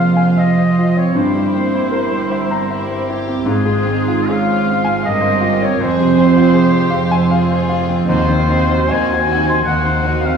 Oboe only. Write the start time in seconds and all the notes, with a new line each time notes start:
Already playing: F5
0.38 D#5
0.98 C#5
1.17 C5
3.50 G#4
4.31 F5
5.05 D#5
5.65 C#5
5.81 C5
8.09 C5
8.91 G#5
9.67 F#5
10.26 F5